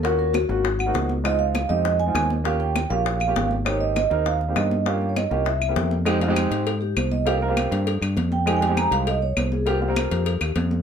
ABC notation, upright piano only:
X:1
M:4/4
L:1/16
Q:1/4=200
K:Fm
V:1 name="Upright piano"
[B,DF_G]4 z2 [B,DFG]2 z3 [B,CEG]3 z2 | [A,CEF]4 z2 [A,CEG]4 z [A,CEF]3 z2 | [B,DFG]4 z2 [B,DFG]4 z [B,DFG]3 z2 | [B,CEG]4 z2 [B,CEB]4 z [B,CEG]3 z2 |
[B,DFG]4 z2 [B,DFG]2 z3 [B,C=EG]3 z2 | [A,CEG] z [A,CEF] [A,CEG]6 z6 z | [B,CFG] z [B,CFB] [B,CFG]6 z6 z | [A,CEG] z [A,CEG] [A,CEG]6 z6 z |
[B,CFG] z [B,CFG] [B,CFB]6 z6 z |]